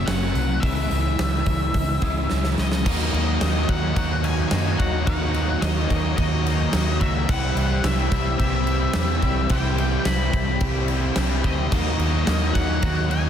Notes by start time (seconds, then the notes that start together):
Already playing: F#2 C#3 F#3 A#3 C#4 F#4 G#4
0.06 F#1 F#2 C#3 F#3 A#3 C#4 F#5, snare, open hi-hat
0.34 C2 F#3, open hi-hat
0.60 C#2 C#3 E3 G#3 C#4 E5, kick, open hi-hat
0.64 G#3 C#4 E4
0.91 C#2 G#3, open hi-hat
1.18 C#2 E3, snare, open hi-hat
1.46 C#2 G#3, kick, open hi-hat
1.74 C#2 C#3 E3 G#3 C#4 E4, kick, open hi-hat
2.02 C#3 E3 G#3 C#4 G#4, kick, open hi-hat
2.29 C#2 C#3 E3 G#3 C#4, snare
2.44 snare
2.58 C#2 E3 D#5, snare
2.72 snare
2.85 D#2 D#3 F#3 A#3 D#4 F#4 D#5 A#5, kick, crash
2.89 F#4 C#5
3.13 D#2 D#3 F#3 A#3 D#4, crash
3.41 D#2 D#3 F#3 A#3 D#4 F#4, snare, crash
3.68 D#2 D#3 F#3 A#3 C#4 D#4 F#5, kick, crash
3.96 D#2 D#3 F#3 A#3 D#4 F#4, kick, crash
4.23 D#3 F#3 A#3 C#4 D#4 F#4 G#5, crash
4.51 F#2 D#3 F#3 A#3 D#4 F#4, snare, crash
4.78 D#2 D#3 F#3 A#3 D#4 F#4 F#5, kick, crash
5.06 D#2 D#3 F#3 A#3 D#4 F#4 F#5, kick, crash
5.33 D#3 F#3 A#3 D#4, crash
5.62 D#2 D#3 F#3 A#3 D#4 F#4 D#5, snare, crash
5.89 D#2 D#3 F#3 A#3 C#4 D#4, kick, crash
6.17 D#2 D#3 F#3 A#3 D#4 F#4 D#5, kick, crash
6.45 D#3 F#3 A#3 C#4 D#4 F#4, crash
6.72 D#2 D#3 F#3 A#3 D#4 F#4, snare, crash
7.00 C#2 D#3 F#3 A#3 D#4 F#4 E5, kick, crash
7.28 C2 C3 E3 G3 C4 E4 G4 C5 E5 F#5, kick, crash
7.32 B5
7.56 C2 C3 G3 C4 E4, crash
7.83 C2 C3 E3 G3 C4 E4 G4 E5, snare, crash
8.12 C2 C3 G3 C4 E4, kick, crash
8.39 C2 C3 E3 G3 C4 E4 G4 E5, kick, crash
8.66 C3 G3 C4 E4 G4, crash
8.94 E2 C3 E3 G3 C4 E4 G4, snare, crash
9.21 C2 C3 G3 C4 E4 G4, kick, crash
9.49 C2 C3 E3 G3 C4 E4 G4 G5, kick, crash
9.77 C3 G3 C4 E4, crash
10.05 C2 C3 E3 G3 C4 E4 G4 B5, snare, crash
10.32 C2 C3 G3 C4 E4, kick, crash
10.60 C2 C3 E3 G3 C4 E4 G4, kick, crash
10.88 C3 G3 C4 E4 G4, crash
11.16 C2 C3 E3 G3 C4 E4 G4, snare, crash
11.44 D2 C3 G3 C4 E4 G4 D#5, kick, crash
11.72 D#2 D#3 F#3 A#3 D#4 F#4 C#5 D#5 A#5, kick, crash
11.98 D#2 D#3 F#3 A#3 D#4, crash
12.27 D#2 D#3 F#3 A#3 D#4 F#4, snare, crash
12.54 D#2 D#3 F#3 A#3 C#4 D#4 F#5, kick, crash
12.82 D#2 D#3 F#3 A#3 D#4 F#4, kick, crash
13.09 D#3 F#3 A#3 C#4 D#4 F#4 G#5, crash